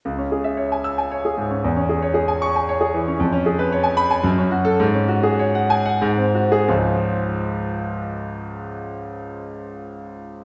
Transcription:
\new Staff \with { instrumentName = "Grand piano" } { \time 3/4 \key gis \phrygian \tempo 4 = 106 << { r4. e'''8 r4 | r4. cis'''8 r4 | r4. b''8 r8. a'16 | r4. gis''8 r8. gis'16 |
<cis, gis, eis gis cis' eis'>2.~ | <cis, gis, eis gis cis' eis'>2. | } \\ { cis,16 cis'16 gis'16 e''16 cis''16 gis''8 gis''16 cis''16 gis'16 gis,16 cis'16 | e,16 cis'16 gis'16 cis''16 gis'16 gis''8 gis''16 cis''16 gis'16 e16 cis'16 | eis,16 cis'16 gis'16 b'16 cis''16 gis''8 gis''16 fis,16 cis'16 fis'8 | gis,16 cis'16 fis'16 gis'16 cis''16 fis''8 fis''16 gis,16 bis16 fis'8 |
r2. | r2. | } >> }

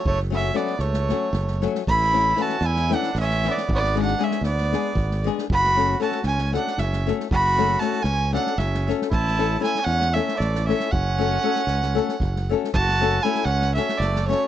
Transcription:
<<
  \new Staff \with { instrumentName = "Violin" } { \time 7/8 \key fis \minor \tempo 4 = 116 cis''8 e''8 d''8 cis''4. r8 | b''4 a''8 gis''8 fis''8 e''8 d''8 | d''8 fis''8 e''8 d''4. r8 | b''4 a''8 gis''8 fis''8 e''8 r8 |
b''4 a''8 gis''8 fis''8 e''8 r8 | a''4 gis''8 fis''8 e''8 d''8 e''8 | fis''2. r8 | a''4 gis''8 fis''8 e''8 d''8 cis''8 | }
  \new Staff \with { instrumentName = "Nylon-string guitar" } { \time 7/8 \key fis \minor r8 <fis a cis' fis'>8 <fis a cis' fis'>8 r8 <fis a cis' fis'>8 r8 <fis a cis' fis'>8 | r8 <e a cis' e'>8 <e a cis' e'>8 r8 <e a cis' e'>8 r8 <e a cis' e'>8 | r8 <gis b d' gis'>8 <gis b d' gis'>8 r8 <gis b d' gis'>8 r8 <gis b d' gis'>8 | r8 <a cis' fis' a'>8 <a cis' fis' a'>8 r8 <a cis' fis' a'>8 r8 <a cis' fis' a'>8 |
r8 <a cis' fis' a'>8 <a cis' fis' a'>8 r8 <a cis' fis' a'>8 r8 <a cis' fis' a'>8 | r8 <a cis' e' a'>8 <a cis' e' a'>8 r8 <a cis' e' a'>8 r8 <a cis' e' a'>8 | r8 <a cis' fis' a'>8 <a cis' fis' a'>8 r8 <a cis' fis' a'>8 r8 <a cis' fis' a'>8 | r8 <a cis' fis' a'>8 <a cis' fis' a'>8 r8 <a cis' fis' a'>8 r8 <a cis' fis' a'>8 | }
  \new Staff \with { instrumentName = "Trumpet" } { \time 7/8 \key fis \minor a8 cis'8 b8 a4. r8 | e'4 fis'8 e'8 d'8 cis'8 b8 | b8 d'8 cis'8 b4. r8 | fis'4 fis'8 cis'8 d'8 cis'8 r8 |
fis'4 fis'8 cis'8 d'8 cis'8 r8 | e'4 e'8 cis'8 cis'8 a8 cis'8 | cis'2. r8 | fis'4 e'8 cis'8 cis'8 a8 a8 | }
  \new Staff \with { instrumentName = "Fingered electric bass" } { \clef bass \time 7/8 \key fis \minor fis,,4. cis,4 fis,,4 | a,,4. e,4 a,,4 | gis,,4. d,4 gis,,4 | fis,,4. cis,4 fis,,4 |
fis,,4. cis,4 fis,,4 | a,,4. e,4 a,,4 | fis,,4. cis,4 fis,,4 | fis,,4. cis,4 fis,,4 | }
  \new DrumStaff \with { instrumentName = "Drums" } \drummode { \time 7/8 bd16 sn16 sn8 sn16 sn16 sn16 sn16 sn8 sn16 sn16 sn16 sn16 | bd16 sn16 sn8 sn16 sn16 sn16 sn16 sn16 sn16 sn16 sn16 sn16 sn16 | bd16 sn16 sn16 sn16 sn16 sn16 sn16 sn16 sn8 <bd sn>16 sn16 sn16 sn16 | bd16 sn16 sn8 sn16 sn16 sn16 sn16 sn16 sn16 sn16 sn16 sn16 sn16 |
bd8 sn8 sn16 sn16 sn8 sn16 sn16 sn16 sn16 sn16 sn16 | bd16 sn16 sn8 sn16 sn16 sn16 sn16 sn16 sn16 sn16 sn16 sn16 sn16 | bd8 sn16 sn16 sn16 sn16 sn16 sn16 sn16 sn16 <bd sn>16 sn16 sn16 sn16 | bd16 sn16 sn8 sn16 sn16 sn16 sn16 sn16 sn16 sn16 sn16 sn8 | }
>>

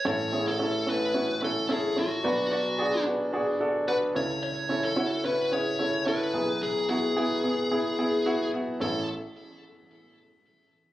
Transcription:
<<
  \new Staff \with { instrumentName = "Lead electric guitar" } { \time 4/4 \key a \major \tempo 4 = 110 cis''8. a'8. b'4 a'8 gis'8 fis'8~ | fis'8 fis'4 r4. b'8 cis''8 | cis''8. a'8. b'8 cis''4 b'4 | gis'8 gis'2. r8 |
a'8 r2. r8 | }
  \new Staff \with { instrumentName = "Grand piano" } { \time 4/4 \key a \major <cis' e' a'>8 <cis' e' gis'>8 <cis' e' a'>8 <cis' e' a'>8 <cis' e' fis'>8 <cis' e' a'>8 <cis' e' a'>8 <cis' e' a'>8 | <d' fis' b'>8 <d' fis' d''>8 <d' fis' gis'>8 <d' fis' b'>8 <d' fis' gis'>8 <d' fis' a'>8 <d' fis' b'>8 <cis' e' a'>8~ | <cis' e' a'>8 <cis' e' a'>8 <cis' e' fis'>8 <cis' e' b'>8 <cis' e' gis'>8 <cis' e' a'>8 <cis' e' a'>8 <b e' gis'>8~ | <b e' gis'>8 <b e' fis'>8 <b e' gis'>8 <b e' gis'>8 <b e' gis'>8 <b e' gis'>8 <b e' fis'>8 <b e' fis'>8 |
<cis' e' a'>8 r2. r8 | }
  \new Staff \with { instrumentName = "Grand piano" } { \clef bass \time 4/4 \key a \major <a,, a,>1 | <b,, b,>2.~ <b,, b,>8 <cis, cis>8~ | <cis, cis>2.~ <cis, cis>8 <b,, b,>8~ | <b,, b,>2.~ <b,, b,>8 r8 |
a,,8 r2. r8 | }
>>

